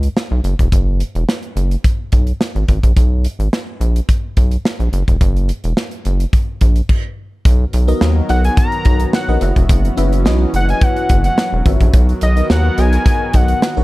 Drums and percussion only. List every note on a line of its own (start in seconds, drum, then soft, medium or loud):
0.03 closed hi-hat soft
0.17 snare loud
0.44 closed hi-hat medium
0.59 kick medium
0.59 closed hi-hat soft
0.72 kick loud
0.72 closed hi-hat medium
1.00 closed hi-hat medium
1.15 closed hi-hat soft
1.29 snare loud
1.43 closed hi-hat soft
1.57 closed hi-hat medium
1.71 closed hi-hat medium
1.84 kick loud
1.84 closed hi-hat medium
2.12 kick medium
2.12 closed hi-hat medium
2.27 closed hi-hat soft
2.41 snare loud
2.56 closed hi-hat soft
2.68 kick medium
2.68 closed hi-hat medium
2.83 kick medium
2.83 closed hi-hat medium
2.97 kick loud
2.97 closed hi-hat medium
3.25 closed hi-hat medium
3.40 closed hi-hat soft
3.53 snare loud
3.81 closed hi-hat medium
3.96 closed hi-hat medium
4.09 kick loud
4.09 closed hi-hat medium
4.37 kick medium
4.37 closed hi-hat medium
4.51 closed hi-hat soft
4.65 snare loud
4.80 closed hi-hat soft
4.93 closed hi-hat medium
5.08 kick medium
5.08 closed hi-hat soft
5.21 kick loud
5.21 closed hi-hat medium
5.36 closed hi-hat soft
5.49 closed hi-hat medium
5.64 closed hi-hat soft
5.77 snare loud
5.91 closed hi-hat soft
6.05 closed hi-hat medium
6.20 closed hi-hat medium
6.33 kick loud
6.33 closed hi-hat medium
6.61 kick medium
6.61 closed hi-hat medium
6.76 closed hi-hat soft
6.89 kick medium
6.89 crash medium
7.45 kick loud
7.45 closed hi-hat medium
7.73 closed hi-hat medium
7.88 closed hi-hat soft
8.01 snare loud
8.29 closed hi-hat medium
8.44 closed hi-hat medium
8.57 kick loud
8.57 closed hi-hat medium
8.72 closed hi-hat soft
8.85 kick loud
8.85 closed hi-hat medium
9.00 closed hi-hat medium
9.13 snare loud
9.41 closed hi-hat medium
9.56 kick medium
9.56 closed hi-hat medium
9.69 kick loud
9.69 closed hi-hat loud
9.85 closed hi-hat soft
9.98 closed hi-hat medium
10.13 closed hi-hat soft
10.26 snare loud
10.54 closed hi-hat medium
10.69 closed hi-hat medium
10.81 kick loud
10.81 closed hi-hat medium
10.97 closed hi-hat soft
11.09 kick medium
11.09 closed hi-hat medium
11.24 closed hi-hat medium
11.38 snare loud
11.66 kick loud
11.66 closed hi-hat medium
11.81 kick medium
11.81 closed hi-hat medium
11.94 kick loud
11.94 closed hi-hat loud
12.09 closed hi-hat soft
12.21 closed hi-hat medium
12.37 closed hi-hat medium
12.50 snare loud
12.78 closed hi-hat medium
12.93 closed hi-hat medium
13.06 kick loud
13.06 closed hi-hat medium
13.34 kick medium
13.34 closed hi-hat medium
13.48 closed hi-hat medium
13.62 snare loud